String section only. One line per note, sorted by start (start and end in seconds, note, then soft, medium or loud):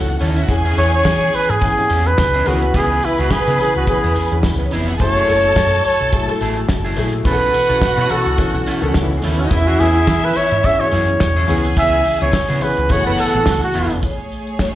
0.00 0.12 F#4 loud
0.00 0.12 F#5 loud
0.21 0.29 C#4 medium
0.21 0.28 C#5 medium
0.28 0.37 D#4 medium
0.28 0.36 D#5 medium
0.35 0.42 E4 medium
0.35 0.42 E5 medium
0.41 0.48 F#4 medium
0.41 0.48 F#5 medium
0.48 2.14 G#4 loud
0.48 2.14 G#5 loud
2.45 4.48 B4 loud
2.45 4.48 B5 loud
4.57 4.65 B3 soft
4.57 4.65 B4 medium
4.64 4.71 C#4 medium
4.64 4.71 C#5 medium
4.71 4.79 D#4 medium
4.71 4.79 D#5 medium
4.79 4.87 E4 medium
4.79 4.87 E5 medium
4.86 4.93 F#4 medium
4.86 4.93 F#5 medium
4.91 4.99 G#4 medium
4.91 4.99 G#5 medium
4.98 6.92 A4 loud
4.98 6.92 A5 loud
7.24 8.92 F#4 loud
7.24 8.92 F#5 loud
9.02 9.10 E3 soft
9.02 9.10 E4 medium
9.11 9.17 F#3 medium
9.11 9.17 F#4 medium
9.16 9.23 G#3 medium
9.16 9.23 G#4 medium
9.23 9.31 A3 medium
9.23 9.31 A4 medium
9.30 9.38 B3 medium
9.30 9.38 B4 medium
9.39 9.45 C#4 medium
9.39 9.45 C#5 loud
9.45 9.51 D#4 medium
9.45 9.51 D#5 loud
9.50 11.17 E4 loud
9.50 11.17 E5 loud
11.48 12.59 G#4 loud
11.48 12.59 G#5 loud
12.89 13.73 F#4 medium
12.89 13.73 F#5 loud
14.03 14.75 A3 medium
14.03 14.75 G#4 medium
14.03 14.75 C#5 medium